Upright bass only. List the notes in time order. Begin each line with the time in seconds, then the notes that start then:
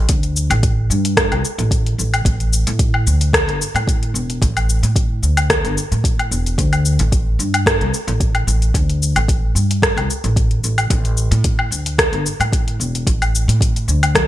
0.09 D2
0.50 A1
0.90 G2
1.32 C2
1.58 A1
1.98 A1
2.25 A1
2.67 A2
3.07 D2
3.48 G1
3.74 A2
4.14 E1
4.42 A1
4.83 A2
5.23 D2
5.64 G1
5.92 A2
6.31 E1
6.58 D2
6.99 A1
7.39 G2
7.81 C2
8.07 A1
8.47 A1
8.74 D2
9.16 A1
9.55 G2
9.97 C2
10.24 A1
10.64 A1
10.90 A1
11.31 A2
11.71 D2
12.12 G1
12.40 A2
12.80 E1
13.07 A1
13.48 A2
13.88 D2